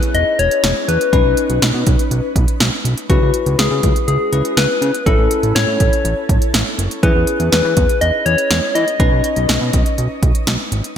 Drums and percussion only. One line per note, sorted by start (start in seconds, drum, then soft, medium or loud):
0.03 closed hi-hat medium
0.15 closed hi-hat medium
0.39 closed hi-hat medium
0.51 closed hi-hat medium
0.64 snare loud
0.64 closed hi-hat medium
0.89 closed hi-hat medium
1.01 closed hi-hat medium
1.13 kick loud
1.13 closed hi-hat medium
1.37 closed hi-hat medium
1.50 closed hi-hat medium
1.62 snare loud
1.62 closed hi-hat medium
1.87 kick medium
1.87 closed hi-hat medium
1.99 closed hi-hat medium
2.11 closed hi-hat medium
2.36 kick medium
2.36 closed hi-hat medium
2.48 closed hi-hat medium
2.60 snare loud
2.60 closed hi-hat medium
2.85 closed hi-hat medium
2.98 closed hi-hat medium
3.10 kick loud
3.10 closed hi-hat medium
3.34 closed hi-hat medium
3.46 closed hi-hat medium
3.59 snare loud
3.59 closed hi-hat medium
3.83 kick medium
3.83 closed hi-hat medium
3.96 closed hi-hat medium
4.08 closed hi-hat medium
4.33 closed hi-hat medium
4.45 closed hi-hat medium
4.57 snare loud
4.57 closed hi-hat medium
4.82 closed hi-hat medium
4.94 closed hi-hat medium
5.06 kick loud
5.06 closed hi-hat medium
5.31 closed hi-hat medium
5.43 closed hi-hat medium
5.56 snare loud
5.56 closed hi-hat medium
5.80 kick medium
5.80 closed hi-hat medium
5.93 closed hi-hat medium
6.05 closed hi-hat medium
6.29 kick medium
6.29 closed hi-hat medium
6.42 closed hi-hat medium
6.54 snare loud
6.54 closed hi-hat medium
6.79 closed hi-hat medium
6.91 closed hi-hat medium
7.03 kick loud
7.03 closed hi-hat medium
7.27 closed hi-hat medium
7.40 closed hi-hat medium
7.52 snare loud
7.52 closed hi-hat medium
7.77 kick medium
7.77 closed hi-hat medium
7.89 closed hi-hat medium
8.01 closed hi-hat medium
8.26 closed hi-hat medium
8.38 closed hi-hat medium
8.51 snare loud
8.51 closed hi-hat medium
8.75 closed hi-hat medium
8.88 closed hi-hat medium
9.00 kick loud
9.00 closed hi-hat medium
9.24 closed hi-hat medium
9.36 closed hi-hat medium
9.49 snare loud
9.49 closed hi-hat medium
9.73 kick medium
9.73 closed hi-hat medium
9.86 closed hi-hat medium
9.98 closed hi-hat medium
10.23 kick loud
10.23 closed hi-hat medium
10.35 closed hi-hat medium
10.47 snare loud
10.47 closed hi-hat medium
10.72 closed hi-hat medium
10.84 closed hi-hat medium